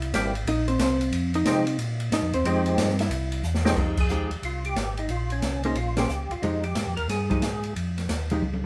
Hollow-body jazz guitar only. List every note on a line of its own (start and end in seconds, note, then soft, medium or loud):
0.00 0.11 E4 medium
0.00 0.11 E5 loud
0.48 0.68 D#4 medium
0.48 0.68 D#5 medium
0.68 0.80 C4 medium
0.68 0.79 C5 medium
0.81 1.31 C4 medium
0.81 1.30 C5 medium
1.35 1.76 D#4 medium
1.35 1.76 D#5 medium
2.14 2.33 D#4 medium
2.14 2.33 D#5 medium
2.34 2.45 C4 medium
2.34 2.45 C5 loud
2.48 2.97 C4 medium
2.48 2.97 C5 medium
3.01 3.42 E4 medium
3.01 3.42 E5 medium
3.77 3.96 F3 medium
3.77 3.96 G#3 soft
3.77 3.96 D#4 medium
3.77 3.97 G4 medium
4.10 4.29 F3 medium
4.10 4.30 G#3 medium
4.10 4.30 D#4 medium
4.10 4.30 G4 medium
5.65 5.75 A#3 medium
5.65 5.76 C#4 medium
5.65 5.76 G#4 medium
5.65 5.76 C5 medium
5.98 6.08 A#3 medium
5.98 6.09 C#4 medium
5.98 6.09 G#4 medium
5.98 6.09 C5 medium
6.44 6.62 F3 medium
6.44 6.62 G#3 medium
6.44 6.63 D#4 medium
6.44 6.63 G4 medium
7.30 7.41 F3 medium
7.30 7.41 G#3 soft
7.30 7.42 D#4 medium
7.30 7.42 G4 medium
8.32 8.42 F3 medium
8.32 8.42 G#3 medium
8.32 8.42 D#4 medium
8.32 8.42 G4 medium